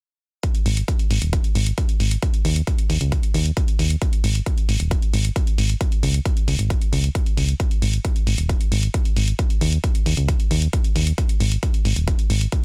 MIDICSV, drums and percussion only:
0, 0, Header, 1, 2, 480
1, 0, Start_track
1, 0, Tempo, 447761
1, 465, Time_signature, 4, 2, 24, 8
1, 13557, End_track
2, 0, Start_track
2, 0, Title_t, "Drums"
2, 465, Note_on_c, 9, 36, 109
2, 465, Note_on_c, 9, 42, 88
2, 572, Note_off_c, 9, 42, 0
2, 573, Note_off_c, 9, 36, 0
2, 585, Note_on_c, 9, 42, 50
2, 693, Note_off_c, 9, 42, 0
2, 705, Note_on_c, 9, 46, 96
2, 812, Note_off_c, 9, 46, 0
2, 826, Note_on_c, 9, 42, 51
2, 933, Note_off_c, 9, 42, 0
2, 945, Note_on_c, 9, 42, 87
2, 946, Note_on_c, 9, 36, 103
2, 1053, Note_off_c, 9, 36, 0
2, 1053, Note_off_c, 9, 42, 0
2, 1065, Note_on_c, 9, 42, 47
2, 1172, Note_off_c, 9, 42, 0
2, 1185, Note_on_c, 9, 46, 84
2, 1292, Note_off_c, 9, 46, 0
2, 1305, Note_on_c, 9, 42, 48
2, 1412, Note_off_c, 9, 42, 0
2, 1425, Note_on_c, 9, 42, 92
2, 1426, Note_on_c, 9, 36, 109
2, 1532, Note_off_c, 9, 42, 0
2, 1533, Note_off_c, 9, 36, 0
2, 1545, Note_on_c, 9, 42, 48
2, 1652, Note_off_c, 9, 42, 0
2, 1665, Note_on_c, 9, 46, 91
2, 1772, Note_off_c, 9, 46, 0
2, 1785, Note_on_c, 9, 42, 51
2, 1892, Note_off_c, 9, 42, 0
2, 1905, Note_on_c, 9, 36, 101
2, 1905, Note_on_c, 9, 42, 84
2, 2012, Note_off_c, 9, 42, 0
2, 2013, Note_off_c, 9, 36, 0
2, 2024, Note_on_c, 9, 42, 47
2, 2131, Note_off_c, 9, 42, 0
2, 2145, Note_on_c, 9, 46, 81
2, 2252, Note_off_c, 9, 46, 0
2, 2265, Note_on_c, 9, 42, 53
2, 2372, Note_off_c, 9, 42, 0
2, 2385, Note_on_c, 9, 36, 113
2, 2385, Note_on_c, 9, 42, 85
2, 2492, Note_off_c, 9, 42, 0
2, 2493, Note_off_c, 9, 36, 0
2, 2505, Note_on_c, 9, 42, 49
2, 2612, Note_off_c, 9, 42, 0
2, 2625, Note_on_c, 9, 46, 98
2, 2732, Note_off_c, 9, 46, 0
2, 2746, Note_on_c, 9, 42, 49
2, 2853, Note_off_c, 9, 42, 0
2, 2865, Note_on_c, 9, 36, 106
2, 2865, Note_on_c, 9, 42, 86
2, 2972, Note_off_c, 9, 42, 0
2, 2973, Note_off_c, 9, 36, 0
2, 2985, Note_on_c, 9, 42, 49
2, 3093, Note_off_c, 9, 42, 0
2, 3106, Note_on_c, 9, 46, 86
2, 3213, Note_off_c, 9, 46, 0
2, 3225, Note_on_c, 9, 42, 50
2, 3332, Note_off_c, 9, 42, 0
2, 3345, Note_on_c, 9, 36, 111
2, 3345, Note_on_c, 9, 42, 85
2, 3452, Note_off_c, 9, 36, 0
2, 3452, Note_off_c, 9, 42, 0
2, 3465, Note_on_c, 9, 42, 49
2, 3572, Note_off_c, 9, 42, 0
2, 3585, Note_on_c, 9, 46, 95
2, 3692, Note_off_c, 9, 46, 0
2, 3705, Note_on_c, 9, 42, 51
2, 3812, Note_off_c, 9, 42, 0
2, 3825, Note_on_c, 9, 36, 107
2, 3825, Note_on_c, 9, 42, 87
2, 3932, Note_off_c, 9, 36, 0
2, 3932, Note_off_c, 9, 42, 0
2, 3945, Note_on_c, 9, 42, 49
2, 4053, Note_off_c, 9, 42, 0
2, 4066, Note_on_c, 9, 46, 87
2, 4173, Note_off_c, 9, 46, 0
2, 4185, Note_on_c, 9, 42, 47
2, 4293, Note_off_c, 9, 42, 0
2, 4305, Note_on_c, 9, 36, 113
2, 4305, Note_on_c, 9, 42, 83
2, 4412, Note_off_c, 9, 36, 0
2, 4412, Note_off_c, 9, 42, 0
2, 4425, Note_on_c, 9, 42, 48
2, 4532, Note_off_c, 9, 42, 0
2, 4545, Note_on_c, 9, 46, 100
2, 4652, Note_off_c, 9, 46, 0
2, 4665, Note_on_c, 9, 42, 49
2, 4773, Note_off_c, 9, 42, 0
2, 4785, Note_on_c, 9, 36, 114
2, 4785, Note_on_c, 9, 42, 82
2, 4892, Note_off_c, 9, 36, 0
2, 4893, Note_off_c, 9, 42, 0
2, 4905, Note_on_c, 9, 42, 47
2, 5013, Note_off_c, 9, 42, 0
2, 5025, Note_on_c, 9, 46, 90
2, 5133, Note_off_c, 9, 46, 0
2, 5145, Note_on_c, 9, 42, 48
2, 5252, Note_off_c, 9, 42, 0
2, 5265, Note_on_c, 9, 36, 115
2, 5266, Note_on_c, 9, 42, 85
2, 5372, Note_off_c, 9, 36, 0
2, 5373, Note_off_c, 9, 42, 0
2, 5386, Note_on_c, 9, 42, 46
2, 5493, Note_off_c, 9, 42, 0
2, 5505, Note_on_c, 9, 46, 100
2, 5612, Note_off_c, 9, 46, 0
2, 5625, Note_on_c, 9, 42, 49
2, 5732, Note_off_c, 9, 42, 0
2, 5745, Note_on_c, 9, 36, 106
2, 5745, Note_on_c, 9, 42, 78
2, 5852, Note_off_c, 9, 36, 0
2, 5853, Note_off_c, 9, 42, 0
2, 5865, Note_on_c, 9, 42, 47
2, 5973, Note_off_c, 9, 42, 0
2, 5985, Note_on_c, 9, 46, 85
2, 6092, Note_off_c, 9, 46, 0
2, 6106, Note_on_c, 9, 42, 46
2, 6213, Note_off_c, 9, 42, 0
2, 6225, Note_on_c, 9, 36, 115
2, 6225, Note_on_c, 9, 42, 84
2, 6332, Note_off_c, 9, 36, 0
2, 6333, Note_off_c, 9, 42, 0
2, 6346, Note_on_c, 9, 42, 46
2, 6453, Note_off_c, 9, 42, 0
2, 6466, Note_on_c, 9, 46, 101
2, 6573, Note_off_c, 9, 46, 0
2, 6586, Note_on_c, 9, 42, 47
2, 6693, Note_off_c, 9, 42, 0
2, 6705, Note_on_c, 9, 36, 107
2, 6706, Note_on_c, 9, 42, 76
2, 6812, Note_off_c, 9, 36, 0
2, 6813, Note_off_c, 9, 42, 0
2, 6826, Note_on_c, 9, 42, 44
2, 6933, Note_off_c, 9, 42, 0
2, 6945, Note_on_c, 9, 46, 87
2, 7053, Note_off_c, 9, 46, 0
2, 7066, Note_on_c, 9, 42, 45
2, 7173, Note_off_c, 9, 42, 0
2, 7185, Note_on_c, 9, 36, 111
2, 7186, Note_on_c, 9, 42, 82
2, 7292, Note_off_c, 9, 36, 0
2, 7293, Note_off_c, 9, 42, 0
2, 7306, Note_on_c, 9, 42, 43
2, 7413, Note_off_c, 9, 42, 0
2, 7426, Note_on_c, 9, 46, 96
2, 7533, Note_off_c, 9, 46, 0
2, 7546, Note_on_c, 9, 42, 47
2, 7653, Note_off_c, 9, 42, 0
2, 7665, Note_on_c, 9, 36, 108
2, 7666, Note_on_c, 9, 42, 77
2, 7773, Note_off_c, 9, 36, 0
2, 7773, Note_off_c, 9, 42, 0
2, 7786, Note_on_c, 9, 42, 48
2, 7893, Note_off_c, 9, 42, 0
2, 7905, Note_on_c, 9, 46, 87
2, 8013, Note_off_c, 9, 46, 0
2, 8025, Note_on_c, 9, 42, 47
2, 8133, Note_off_c, 9, 42, 0
2, 8145, Note_on_c, 9, 36, 110
2, 8145, Note_on_c, 9, 42, 86
2, 8253, Note_off_c, 9, 36, 0
2, 8253, Note_off_c, 9, 42, 0
2, 8266, Note_on_c, 9, 42, 47
2, 8373, Note_off_c, 9, 42, 0
2, 8385, Note_on_c, 9, 46, 98
2, 8492, Note_off_c, 9, 46, 0
2, 8506, Note_on_c, 9, 42, 48
2, 8613, Note_off_c, 9, 42, 0
2, 8625, Note_on_c, 9, 36, 104
2, 8625, Note_on_c, 9, 42, 77
2, 8733, Note_off_c, 9, 36, 0
2, 8733, Note_off_c, 9, 42, 0
2, 8746, Note_on_c, 9, 42, 44
2, 8853, Note_off_c, 9, 42, 0
2, 8866, Note_on_c, 9, 46, 83
2, 8973, Note_off_c, 9, 46, 0
2, 8985, Note_on_c, 9, 42, 49
2, 9093, Note_off_c, 9, 42, 0
2, 9105, Note_on_c, 9, 36, 106
2, 9106, Note_on_c, 9, 42, 78
2, 9213, Note_off_c, 9, 36, 0
2, 9213, Note_off_c, 9, 42, 0
2, 9226, Note_on_c, 9, 42, 44
2, 9333, Note_off_c, 9, 42, 0
2, 9345, Note_on_c, 9, 46, 97
2, 9453, Note_off_c, 9, 46, 0
2, 9465, Note_on_c, 9, 42, 49
2, 9573, Note_off_c, 9, 42, 0
2, 9585, Note_on_c, 9, 42, 78
2, 9586, Note_on_c, 9, 36, 108
2, 9692, Note_off_c, 9, 42, 0
2, 9693, Note_off_c, 9, 36, 0
2, 9705, Note_on_c, 9, 42, 47
2, 9812, Note_off_c, 9, 42, 0
2, 9825, Note_on_c, 9, 46, 82
2, 9932, Note_off_c, 9, 46, 0
2, 9945, Note_on_c, 9, 42, 48
2, 10052, Note_off_c, 9, 42, 0
2, 10065, Note_on_c, 9, 36, 110
2, 10065, Note_on_c, 9, 42, 86
2, 10172, Note_off_c, 9, 42, 0
2, 10173, Note_off_c, 9, 36, 0
2, 10185, Note_on_c, 9, 42, 49
2, 10292, Note_off_c, 9, 42, 0
2, 10305, Note_on_c, 9, 46, 98
2, 10412, Note_off_c, 9, 46, 0
2, 10425, Note_on_c, 9, 42, 48
2, 10533, Note_off_c, 9, 42, 0
2, 10545, Note_on_c, 9, 36, 104
2, 10545, Note_on_c, 9, 42, 84
2, 10652, Note_off_c, 9, 42, 0
2, 10653, Note_off_c, 9, 36, 0
2, 10665, Note_on_c, 9, 42, 48
2, 10773, Note_off_c, 9, 42, 0
2, 10786, Note_on_c, 9, 46, 84
2, 10893, Note_off_c, 9, 46, 0
2, 10906, Note_on_c, 9, 42, 48
2, 11013, Note_off_c, 9, 42, 0
2, 11025, Note_on_c, 9, 36, 103
2, 11026, Note_on_c, 9, 42, 88
2, 11133, Note_off_c, 9, 36, 0
2, 11133, Note_off_c, 9, 42, 0
2, 11145, Note_on_c, 9, 42, 49
2, 11252, Note_off_c, 9, 42, 0
2, 11265, Note_on_c, 9, 46, 94
2, 11372, Note_off_c, 9, 46, 0
2, 11385, Note_on_c, 9, 42, 53
2, 11492, Note_off_c, 9, 42, 0
2, 11505, Note_on_c, 9, 36, 101
2, 11505, Note_on_c, 9, 42, 83
2, 11612, Note_off_c, 9, 42, 0
2, 11613, Note_off_c, 9, 36, 0
2, 11625, Note_on_c, 9, 42, 49
2, 11732, Note_off_c, 9, 42, 0
2, 11745, Note_on_c, 9, 46, 84
2, 11852, Note_off_c, 9, 46, 0
2, 11866, Note_on_c, 9, 42, 51
2, 11973, Note_off_c, 9, 42, 0
2, 11985, Note_on_c, 9, 42, 93
2, 11986, Note_on_c, 9, 36, 103
2, 12093, Note_off_c, 9, 36, 0
2, 12093, Note_off_c, 9, 42, 0
2, 12106, Note_on_c, 9, 42, 51
2, 12213, Note_off_c, 9, 42, 0
2, 12225, Note_on_c, 9, 46, 89
2, 12332, Note_off_c, 9, 46, 0
2, 12345, Note_on_c, 9, 42, 52
2, 12452, Note_off_c, 9, 42, 0
2, 12465, Note_on_c, 9, 36, 100
2, 12465, Note_on_c, 9, 42, 89
2, 12572, Note_off_c, 9, 42, 0
2, 12573, Note_off_c, 9, 36, 0
2, 12585, Note_on_c, 9, 42, 47
2, 12692, Note_off_c, 9, 42, 0
2, 12705, Note_on_c, 9, 46, 77
2, 12812, Note_off_c, 9, 46, 0
2, 12825, Note_on_c, 9, 42, 51
2, 12932, Note_off_c, 9, 42, 0
2, 12945, Note_on_c, 9, 42, 91
2, 12946, Note_on_c, 9, 36, 103
2, 13052, Note_off_c, 9, 42, 0
2, 13053, Note_off_c, 9, 36, 0
2, 13065, Note_on_c, 9, 42, 52
2, 13172, Note_off_c, 9, 42, 0
2, 13185, Note_on_c, 9, 46, 93
2, 13292, Note_off_c, 9, 46, 0
2, 13305, Note_on_c, 9, 42, 50
2, 13412, Note_off_c, 9, 42, 0
2, 13425, Note_on_c, 9, 36, 106
2, 13425, Note_on_c, 9, 42, 82
2, 13532, Note_off_c, 9, 42, 0
2, 13533, Note_off_c, 9, 36, 0
2, 13557, End_track
0, 0, End_of_file